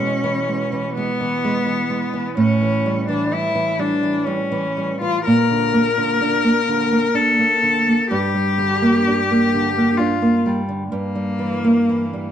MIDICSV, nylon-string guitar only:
0, 0, Header, 1, 2, 480
1, 0, Start_track
1, 0, Tempo, 946372
1, 1202, Time_signature, 3, 2, 24, 8
1, 2159, Tempo, 977199
1, 3119, Tempo, 940439
1, 5519, Tempo, 967742
1, 6215, End_track
2, 0, Start_track
2, 0, Title_t, "Nylon-string guitar"
2, 0, Program_c, 0, 24
2, 0, Note_on_c, 0, 47, 62
2, 0, Note_on_c, 0, 52, 41
2, 0, Note_on_c, 0, 56, 49
2, 71, Note_off_c, 0, 52, 0
2, 120, Note_on_c, 0, 52, 52
2, 194, Note_off_c, 0, 56, 0
2, 245, Note_on_c, 0, 56, 46
2, 314, Note_off_c, 0, 52, 0
2, 366, Note_on_c, 0, 52, 47
2, 437, Note_off_c, 0, 56, 0
2, 493, Note_on_c, 0, 56, 46
2, 557, Note_off_c, 0, 52, 0
2, 611, Note_on_c, 0, 52, 45
2, 680, Note_off_c, 0, 56, 0
2, 734, Note_on_c, 0, 56, 49
2, 798, Note_off_c, 0, 52, 0
2, 844, Note_on_c, 0, 52, 49
2, 919, Note_off_c, 0, 56, 0
2, 962, Note_on_c, 0, 56, 45
2, 1035, Note_off_c, 0, 52, 0
2, 1083, Note_on_c, 0, 52, 44
2, 1154, Note_off_c, 0, 56, 0
2, 1181, Note_off_c, 0, 47, 0
2, 1202, Note_off_c, 0, 52, 0
2, 1202, Note_on_c, 0, 45, 63
2, 1325, Note_on_c, 0, 52, 42
2, 1450, Note_on_c, 0, 55, 49
2, 1516, Note_off_c, 0, 52, 0
2, 1565, Note_on_c, 0, 52, 52
2, 1639, Note_off_c, 0, 55, 0
2, 1683, Note_on_c, 0, 55, 49
2, 1757, Note_off_c, 0, 52, 0
2, 1801, Note_on_c, 0, 52, 50
2, 1875, Note_off_c, 0, 55, 0
2, 1922, Note_on_c, 0, 55, 49
2, 1993, Note_off_c, 0, 52, 0
2, 2044, Note_on_c, 0, 52, 47
2, 2113, Note_off_c, 0, 55, 0
2, 2164, Note_on_c, 0, 55, 50
2, 2232, Note_off_c, 0, 52, 0
2, 2286, Note_on_c, 0, 52, 53
2, 2354, Note_off_c, 0, 55, 0
2, 2411, Note_on_c, 0, 55, 46
2, 2481, Note_off_c, 0, 52, 0
2, 2532, Note_on_c, 0, 52, 44
2, 2605, Note_off_c, 0, 55, 0
2, 2630, Note_off_c, 0, 45, 0
2, 2652, Note_off_c, 0, 52, 0
2, 2657, Note_on_c, 0, 46, 61
2, 2773, Note_on_c, 0, 50, 43
2, 2885, Note_on_c, 0, 58, 51
2, 2958, Note_off_c, 0, 50, 0
2, 3004, Note_on_c, 0, 50, 53
2, 3072, Note_off_c, 0, 58, 0
2, 3119, Note_on_c, 0, 62, 51
2, 3194, Note_off_c, 0, 50, 0
2, 3238, Note_on_c, 0, 58, 48
2, 3313, Note_off_c, 0, 62, 0
2, 3360, Note_on_c, 0, 50, 44
2, 3432, Note_off_c, 0, 58, 0
2, 3483, Note_on_c, 0, 58, 46
2, 3552, Note_off_c, 0, 50, 0
2, 3595, Note_on_c, 0, 62, 53
2, 3672, Note_off_c, 0, 58, 0
2, 3721, Note_on_c, 0, 58, 52
2, 3789, Note_off_c, 0, 62, 0
2, 3843, Note_on_c, 0, 50, 43
2, 3913, Note_off_c, 0, 58, 0
2, 3970, Note_on_c, 0, 58, 47
2, 4036, Note_off_c, 0, 50, 0
2, 4067, Note_off_c, 0, 46, 0
2, 4087, Note_off_c, 0, 58, 0
2, 4088, Note_on_c, 0, 43, 66
2, 4207, Note_on_c, 0, 55, 47
2, 4328, Note_on_c, 0, 50, 45
2, 4400, Note_off_c, 0, 55, 0
2, 4451, Note_on_c, 0, 58, 48
2, 4520, Note_off_c, 0, 50, 0
2, 4578, Note_on_c, 0, 62, 51
2, 4640, Note_off_c, 0, 58, 0
2, 4700, Note_on_c, 0, 58, 45
2, 4762, Note_off_c, 0, 62, 0
2, 4821, Note_on_c, 0, 50, 47
2, 4882, Note_off_c, 0, 58, 0
2, 4935, Note_on_c, 0, 58, 49
2, 5000, Note_off_c, 0, 50, 0
2, 5047, Note_on_c, 0, 62, 52
2, 5117, Note_off_c, 0, 58, 0
2, 5165, Note_on_c, 0, 58, 50
2, 5233, Note_off_c, 0, 62, 0
2, 5287, Note_on_c, 0, 55, 45
2, 5353, Note_off_c, 0, 58, 0
2, 5403, Note_on_c, 0, 50, 39
2, 5475, Note_off_c, 0, 55, 0
2, 5501, Note_off_c, 0, 43, 0
2, 5522, Note_off_c, 0, 50, 0
2, 5522, Note_on_c, 0, 43, 54
2, 5639, Note_on_c, 0, 55, 41
2, 5755, Note_on_c, 0, 52, 46
2, 5829, Note_off_c, 0, 55, 0
2, 5882, Note_on_c, 0, 58, 45
2, 5947, Note_off_c, 0, 52, 0
2, 6003, Note_on_c, 0, 52, 42
2, 6071, Note_off_c, 0, 58, 0
2, 6125, Note_on_c, 0, 55, 37
2, 6194, Note_off_c, 0, 52, 0
2, 6215, Note_off_c, 0, 43, 0
2, 6215, Note_off_c, 0, 55, 0
2, 6215, End_track
0, 0, End_of_file